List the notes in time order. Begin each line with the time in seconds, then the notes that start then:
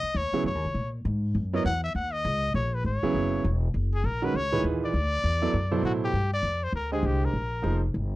Already playing: D#5
0.03 muted upright bass stroke
0.15 D#2 C#5
0.32 C#3 F#3 B3 E4 G#4, muted upright bass stroke
0.44 F#2 C#5
0.55 D#2
0.65 C#2
0.74 A#2
1.05 G#2
1.35 F#2
1.53 F#3 B3 E4 A#4 C#5 D#5
1.65 E2 F#5
1.84 E5
1.95 D#2 F#5
2.13 D#5
2.25 C#2
2.54 A#1 C#5
2.75 B4
2.84 G#1 C#5
3.03 C#3 F#3 B3 E4 G#4, muted upright bass stroke
3.14 F#1
3.44 E1
3.74 F#1
3.94 G#4
4.04 A#1 A#4
4.22 D#3 G#3 C#4 F#4 A#4 B4
4.34 C#2 C#5
4.52 A#2 E3 D#4 G#4 B4
4.64 D#2
4.85 D5
4.94 D2
5.24 E2
5.42 F#3 B3 E4 A4 D5
5.53 F#2
5.71 B2 F#3 E4 A4 C5
5.83 A2 F#4
6.04 G4
6.13 G2
6.34 D5
6.43 F2
6.63 C5
6.72 D2 A#4
6.92 D3 G#3 G4 G#4 C5 D#5
7.03 C2 G4
7.25 A#4
7.33 A#1
7.62 F1 F3 A#3 D#4 G#4 C5
7.94 G1